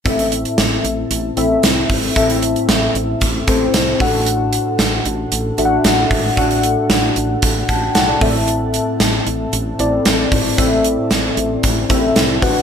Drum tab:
HH |xxxxx-x-x-x-x-o-|xxxxx-x-x-x-x-o-|x-x-x-x-x-x-x-o-|xxx-x-x-x-x-x-o-|
SD |----o-------o---|----o-------o---|----o-------o---|----o-------o---|
BD |o-------------o-|o-------o-o---o-|--------------o-|o-------o-o---o-|

HH |x-x-x-x-x-x-x-o-|x-x-x-x-x-x-x-o-|
SD |----o-------o---|----o-------o---|
BD |--------------o-|o-------o-o---o-|